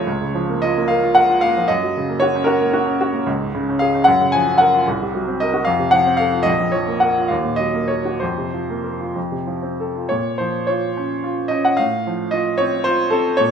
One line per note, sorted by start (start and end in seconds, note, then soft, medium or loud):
0.00 0.61 C#5 medium
0.07 1.66 C#2 medium
0.22 0.43 C#3 soft
0.35 0.56 F3 soft
0.49 0.71 A#3 soft
0.62 0.85 F4 soft
0.62 0.89 D#5 medium
0.77 0.98 A#3 soft
0.88 1.11 A#4 soft
0.88 1.15 F5 medium
1.03 1.24 F4 soft
1.15 1.38 A#4 soft
1.15 1.42 F#5 medium
1.29 1.50 F4 soft
1.41 1.64 A#3 soft
1.41 1.68 F5 medium
1.57 1.70 F3 soft
1.68 3.23 F#2 medium
1.68 2.21 D#5 medium
1.83 2.04 F#3 soft
1.97 2.17 C#3 soft
2.09 2.30 A#3 soft
2.20 2.43 F#4 soft
2.20 2.47 C#5 medium
2.36 2.56 C#4 soft
2.44 2.68 F#4 soft
2.44 2.72 A#4 medium
2.60 2.82 A#3 soft
2.73 2.95 F#4 medium
2.86 3.08 C#4 soft
3.01 3.22 F#4 medium
3.13 3.27 A#3 soft
3.27 4.04 C#2 medium
3.41 3.62 G#2 soft
3.55 3.75 C#3 medium
3.69 3.89 C#4 soft
3.79 4.02 G#4 medium
3.79 4.06 F5 medium
3.95 4.07 C#4 soft
4.04 4.84 F#2 medium
4.04 4.32 F#5 medium
4.21 4.42 C#3 soft
4.32 4.55 F3 soft
4.32 4.59 G#5 medium
4.47 4.68 C#4 soft
4.58 4.81 A#4 medium
4.58 4.85 F#5 medium
4.74 4.87 F4 soft
4.88 5.64 C2 medium
5.02 5.22 C3 soft
5.15 5.35 F#3 soft
5.28 5.48 C4 soft
5.40 5.62 A#4 soft
5.40 5.66 D#5 medium
5.54 5.66 F#4 soft
5.65 6.45 F2 medium
5.65 5.92 F5 medium
5.79 6.00 C3 soft
5.91 6.14 F3 soft
5.91 6.18 F#5 medium
6.07 6.28 C4 soft
6.17 6.41 A4 soft
6.17 6.46 F5 medium
6.33 6.47 F4 soft
6.43 7.29 A#1 medium
6.43 6.73 D#5 medium
6.60 6.83 F2 soft
6.72 6.97 F3 soft
6.72 7.01 C#5 medium
6.88 7.11 A#3 soft
7.00 7.26 A#4 soft
7.00 7.30 F#5 medium
7.18 7.32 F4 soft
7.28 8.19 D#2 medium
7.28 7.59 F5 medium
7.44 7.69 A#2 soft
7.56 7.84 F#3 soft
7.56 7.89 D#5 medium
7.74 7.99 A#3 soft
7.88 8.15 A#4 soft
7.88 8.20 C#5 medium
8.05 8.21 F#4 soft
8.20 9.13 F2 soft
8.20 9.15 C5 medium
8.38 8.63 C3 soft
8.53 8.78 F3 soft
8.70 8.95 A#3 soft
8.84 9.09 A#4 soft
9.01 9.16 F4 soft
9.16 10.08 F2 soft
9.32 9.57 C3 soft
9.47 9.73 F3 soft
9.62 9.88 C4 soft
9.80 10.05 A4 soft
9.96 10.11 F4 soft
10.09 11.74 A#2 soft
10.09 10.39 C#5 medium
10.38 10.85 F3 soft
10.38 10.68 C5 medium
10.67 11.13 F4 soft
10.67 11.50 C#5 medium
10.97 11.40 C#4 soft
11.24 11.67 F4 soft
11.48 11.78 C#4 soft
11.48 11.63 D#5 medium
11.65 11.78 F#5 medium
11.77 13.36 A2 medium
11.77 12.32 F5 medium
12.07 12.49 F3 soft
12.31 12.75 F4 soft
12.31 12.58 D#5 medium
12.58 13.02 C4 medium
12.58 12.85 C#5 medium
12.84 13.29 F4 soft
12.84 13.11 C5 medium
13.10 13.40 C4 soft
13.10 13.38 A4 medium
13.37 13.51 A#2 medium
13.37 13.51 C#5 medium